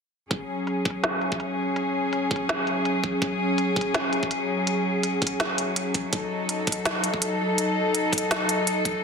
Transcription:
0.30 9.04 F#3 medium
0.30 6.08 C#4 medium
0.30 6.11 G#4 medium
0.30 kick loud
0.30 closed hi-hat medium
0.67 closed hi-hat medium
0.85 kick medium
0.85 closed hi-hat soft
0.90 closed hi-hat medium
1.04 snare loud
1.04 closed hi-hat medium
1.22 closed hi-hat medium
1.32 kick medium
1.40 closed hi-hat medium
1.76 closed hi-hat medium
2.13 closed hi-hat medium
2.31 kick loud
2.31 closed hi-hat soft
2.36 closed hi-hat medium
2.49 snare loud
2.49 closed hi-hat medium
2.67 closed hi-hat medium
2.85 closed hi-hat medium
3.04 kick medium
3.04 closed hi-hat soft
3.22 kick loud
3.22 closed hi-hat medium
3.58 closed hi-hat medium
3.76 kick loud
3.76 closed hi-hat soft
3.81 closed hi-hat medium
3.94 snare loud
3.94 closed hi-hat medium
4.13 closed hi-hat medium
4.23 kick medium
4.31 closed hi-hat medium
4.67 closed hi-hat medium
5.03 closed hi-hat medium
5.22 kick medium
5.22 closed hi-hat soft
5.27 closed hi-hat medium
5.40 snare loud
5.40 closed hi-hat medium
5.58 closed hi-hat medium
5.76 closed hi-hat medium
5.94 kick medium
5.94 closed hi-hat soft
6.12 9.04 D#4 medium
6.12 9.04 A4 medium
6.12 kick loud
6.12 closed hi-hat medium
6.49 closed hi-hat medium
6.67 kick loud
6.67 closed hi-hat soft
6.72 closed hi-hat medium
6.85 snare loud
6.85 closed hi-hat medium
7.04 closed hi-hat medium
7.14 kick medium
7.22 closed hi-hat medium
7.58 closed hi-hat medium
7.95 closed hi-hat medium
8.13 kick medium
8.13 closed hi-hat soft
8.18 closed hi-hat medium
8.31 snare loud
8.31 closed hi-hat medium
8.49 closed hi-hat medium
8.67 closed hi-hat medium
8.85 kick medium
8.85 closed hi-hat soft

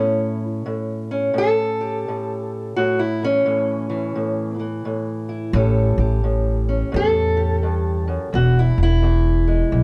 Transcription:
0.00 0.65 A2 medium
0.00 1.11 C#4 medium
0.00 0.43 E4 loud
0.66 1.33 A2 medium
1.11 3.24 C#4 medium
1.34 2.08 A2 medium
1.38 2.76 A4 loud
1.81 2.76 G4 soft
2.08 2.77 A2 medium
2.76 3.45 A2 medium
2.76 2.99 F#4 medium
2.99 3.22 E4 medium
3.23 3.89 E3 soft
3.23 4.63 C#4 medium
3.46 4.15 A2 medium
3.90 4.59 E3 medium
4.15 4.84 A2 medium
4.59 8.34 E3 soft
4.85 5.51 A2 medium
5.29 5.55 E4 medium
5.53 5.92 A1 loud
5.53 6.22 A2 medium
5.53 6.67 C#4 medium
5.53 5.98 G4 soft
5.53 6.95 A4 medium
5.98 6.82 A1 medium
5.98 7.35 G4 soft
6.24 6.91 A2 medium
6.69 8.31 C#4 soft
6.92 8.16 E2 medium
6.92 7.62 A2 medium
6.96 8.35 A4 loud
7.37 8.30 G4 medium
7.63 8.07 G2 medium
8.08 8.32 F#2 medium
8.33 8.72 E1 medium
8.33 9.01 E2 medium
8.33 8.57 F#4 medium
8.59 8.81 E4 medium
8.78 9.61 E1 medium
8.83 9.83 E4 loud
9.02 9.71 E2 medium
9.48 9.83 G#3 medium
9.72 9.83 B1 medium
9.72 9.83 E2 medium

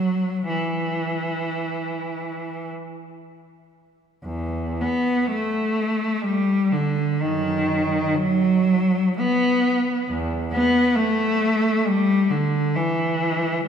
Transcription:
0.00 0.47 F#3 medium
0.48 2.70 E3 medium
4.24 4.81 E2 soft
4.82 5.30 B3 medium
5.30 6.22 A3 medium
6.23 6.72 G3 medium
6.72 7.21 D3 medium
7.21 8.11 F#2 soft
7.21 8.15 D#3 medium
8.14 9.19 F#3 medium
9.19 10.09 B3 medium
10.10 10.51 E2 soft
10.53 10.95 B3 medium
10.96 11.87 A3 medium
11.87 12.33 G3 medium
12.30 12.76 D3 medium
12.75 13.65 E3 medium

